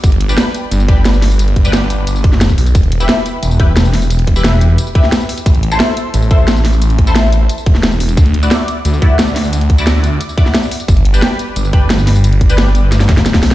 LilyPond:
<<
  \new Staff \with { instrumentName = "Synth stab" } { \time 4/4 \key g \major \tempo 4 = 177 r8. <d' g' b'>4.~ <d' g' b'>16 <d' g' b'>4.~ | <d' g' b'>8. <d' g' b'>4.~ <d' g' b'>16 r4. | r8. <e' g' b'>4.~ <e' g' b'>16 <e' g' b'>4.~ | <e' g' b'>8. <e' g' b'>4.~ <e' g' b'>16 <e' g' b'>4. |
r8. <e' a' c''>4.~ <e' a' c''>16 <e' a' c''>4.~ | <e' a' c''>8. <e' a' c''>4.~ <e' a' c''>16 r4. | r8. <e' fis' d''>4.~ <e' fis' d''>16 <e' fis' d''>4.~ | <e' fis' d''>8. <e' fis' d''>4.~ <e' fis' d''>16 <e' fis' d''>4. |
r8. <d' g' b'>4.~ <d' g' b'>16 <d' g' b'>4.~ | <d' g' b'>8. <d' g' b'>4.~ <d' g' b'>16 r4. | }
  \new Staff \with { instrumentName = "Detuned saw bass" } { \clef bass \time 4/4 \key g \major g,,4 r4 g,,2~ | g,,8 g,,4. g,,4. b,,8 | e,,4 r4 e,,2~ | e,,8 e,,4. r2 |
a,,4 r4 a,,2~ | a,,8 a,,4. r8 e,,4. | d,4 r4 d,2~ | d,8 d,4. r2 |
g,,4 r4 g,,2~ | g,,8 g,,4. g,,4. b,,8 | }
  \new DrumStaff \with { instrumentName = "Drums" } \drummode { \time 4/4 <hh bd tamb>16 hh16 hh16 tamb16 <hh sn tamb>8 <hh tamb>8 <hh tamb>16 tamb16 <hh bd>8 <hh sn tamb>16 tamb16 <hho sn>16 tamb16 | <hh tamb>16 hh16 <hh bd>16 <hh tamb>16 <hh sn tamb>8 <hh tamb>8 <hh tamb>16 tamb16 <hh bd>16 sn16 <hh sn tamb>16 <bd tamb>16 hho16 <hh tamb>16 | <hh bd tamb>16 hh16 hh16 tamb16 <hh sn tamb>8 <hh tamb>8 <hh tamb>16 tamb16 <hh bd>8 <hh sn tamb>16 tamb16 <hho sn>16 tamb16 | <hh tamb>16 hh16 <hh bd>16 tamb16 <hh sn tamb>8 <hh tamb>8 <hh tamb>16 tamb16 <hh bd>16 sn16 <hh sn tamb>16 tamb16 hho16 <hh tamb>16 |
<hh bd tamb>16 hh16 hh16 tamb16 <hh sn tamb>8 <hh tamb>8 <hh tamb>16 tamb16 <hh bd>8 <hh sn tamb>16 tamb16 <hho sn>16 tamb16 | <hh tamb>16 hh16 <hh bd>16 tamb16 <hh sn tamb>8 <hh tamb>8 <hh tamb>16 tamb16 <hh bd>16 sn16 <hh sn tamb>16 tamb16 hho16 <hh tamb>16 | <hh bd tamb>16 hh16 hh16 tamb16 <hh sn tamb>8 <hh tamb>8 <hh tamb>16 tamb16 <hh bd>8 <hh sn tamb>16 tamb16 <hho sn>16 tamb16 | <hh tamb>16 hh16 <hh bd>16 tamb16 <hh sn tamb>8 <hh tamb>8 <hh tamb>16 tamb16 <hh bd>16 sn16 <hh sn tamb>16 tamb16 hho16 <hh tamb>16 |
<hh bd tamb>16 hh16 hh16 tamb16 <hh sn tamb>8 <hh tamb>8 <hh tamb>16 tamb16 <hh bd>8 <hh sn tamb>16 tamb16 <hho sn>16 tamb16 | <hh tamb>16 hh16 <hh bd>16 <hh tamb>16 <hh sn tamb>8 <hh tamb>8 <hh sn tamb>16 <sn tamb>16 <hh bd sn>16 sn16 <hh sn tamb>16 <bd sn tamb>16 <hho sn>16 <hh sn tamb>16 | }
>>